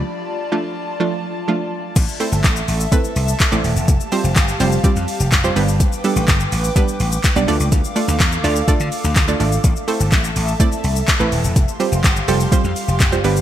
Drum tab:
CC |----------------|x---------------|----------------|----------------|
HH |----------------|x-o-x-o-x-o-x-o-|x-o-x-o-x-o-x-o-|x-o-x-o-x-o-x-o-|
SH |----------------|xxxxxxxxxxxxxxxx|xxxxxxxxxxxxxxxx|xxxxxxxxxxxxxxxx|
CP |----------------|----x-------x---|----x-------x---|----x-------x---|
BD |----------------|o---o---o---o---|o---o---o---o---|o---o---o---o---|

CC |----------------|----------------|----------------|
HH |x-o-x-o-x-o-x-o-|x-o-x-o-x-o-x-o-|x-o-x-o-x-o-x-o-|
SH |xxxxxxxxxxxxxxxx|xxxxxxxxxxxxxxxx|xxxxxxxxxxxxxxxx|
CP |----x-------x---|----x-------x---|----x-------x---|
BD |o---o---o---o---|o---o---o---o---|o---o---o---o---|